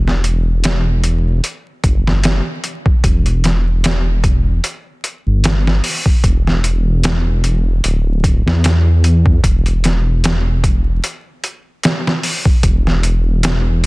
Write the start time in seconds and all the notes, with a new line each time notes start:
Already playing: E1
0.08 snare
0.24 closed hi-hat
0.64 snare, closed hi-hat
1.04 closed hi-hat
1.44 closed hi-hat
1.84 F#1, kick, closed hi-hat
2.06 F#1, snare
2.24 snare, closed hi-hat
2.64 closed hi-hat
2.86 kick
3.04 E1, kick, closed hi-hat
3.26 closed hi-hat
3.44 snare, closed hi-hat
3.84 snare, closed hi-hat
4.24 kick, closed hi-hat
4.64 closed hi-hat
5.04 closed hi-hat
5.26 G1
5.44 snare, closed hi-hat
5.67 snare
5.84 open hi-hat
6.06 kick
6.24 E1, kick, closed hi-hat
6.47 snare
6.64 closed hi-hat
7.03 snare, closed hi-hat
7.44 closed hi-hat
7.84 D1, closed hi-hat
8.24 kick, closed hi-hat
8.46 E2, snare
8.64 snare, closed hi-hat
9.04 closed hi-hat
9.26 kick
9.44 E1, kick, closed hi-hat
9.66 closed hi-hat
9.84 snare, closed hi-hat
10.24 snare, closed hi-hat
10.64 kick, closed hi-hat
11.04 closed hi-hat
11.44 closed hi-hat
11.83 snare, closed hi-hat
12.07 snare
12.23 open hi-hat
12.45 kick
12.63 E1, kick, closed hi-hat
12.87 snare
13.03 closed hi-hat
13.43 snare, closed hi-hat